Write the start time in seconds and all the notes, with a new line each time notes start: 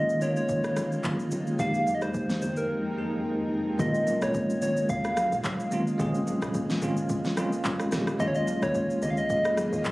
Already playing: C#3 D#3 G#3 A#3 C#4 F4 G#4 D#5
0.09 shaker
0.20 D#3 G#3 A#3 C#4 F4 C#5, low conga, shaker
0.36 C#5, shaker
0.49 kick, shaker
0.64 cross-stick, shaker
0.77 cross-stick, high conga, shaker
0.92 shaker
1.03 kick, clap, high conga, shaker
1.20 shaker
1.31 high conga, low conga, shaker
1.47 shaker
1.58 F2 F3 G#3 A#3 C4 D#4 G4 A#4 F5 G5, kick, low conga, shaker
1.74 shaker
1.87 high conga, shaker
1.95 D#5
2.02 C5, cross-stick, high conga, shaker
2.14 kick, shaker
2.30 snare, shaker
2.42 C5, low conga, shaker
2.57 A#4, shaker
2.96 F2 G#3 A#3 D#4 G#4
3.78 A#1 C#3 G#3 A#3 C#4 F4 D#5, kick, low conga, shaker
3.94 shaker
4.07 high conga, shaker
4.22 A#1 C#5, cross-stick, high conga, shaker
4.34 kick, shaker
4.50 shaker
4.62 G#1 C#5, low conga, shaker
4.77 shaker
4.89 C#2 F5, kick, shaker
5.04 cross-stick, shaker
5.17 cross-stick, high conga, shaker
5.32 A#1, shaker
5.44 kick, clap, high conga, shaker
5.60 shaker
5.71 G#3 C4 C#4 F4, high conga, low conga, shaker
5.87 shaker
5.98 A#1 G#3 C4 C#4 G#4, kick, low conga, shaker
6.15 shaker
6.27 high conga, shaker
6.42 A#1, cross-stick, high conga, shaker
6.54 kick, shaker
6.70 snare, shaker
6.81 G#1 G#3 C4 C#4 F4, low conga, shaker
6.97 shaker
7.09 kick, shaker
7.24 snare, shaker
7.36 G#3 C4 C#4 F4, cross-stick, high conga, shaker
7.53 shaker
7.64 kick, clap, high conga, shaker
7.80 cross-stick, shaker
7.91 A#1 G#3 C4 C#4 G4, cross-stick, snare, high conga, low conga, shaker
8.07 cross-stick, shaker
8.18 D#2 D#3 G#3 A#3 C#4 F4 G#4 D#5, kick, low conga, shaker
8.28 C#5
8.35 D#5, shaker
8.47 high conga, shaker
8.62 D#2 C#5, cross-stick, high conga, shaker
8.75 kick, shaker
8.90 shaker
9.02 C#2 D#5, low conga, shaker
9.10 F5
9.17 D#5, shaker
9.30 F2 D#5, kick, shaker
9.45 cross-stick, shaker
9.57 cross-stick, high conga, shaker
9.73 D#2, shaker
9.84 kick, clap, high conga, shaker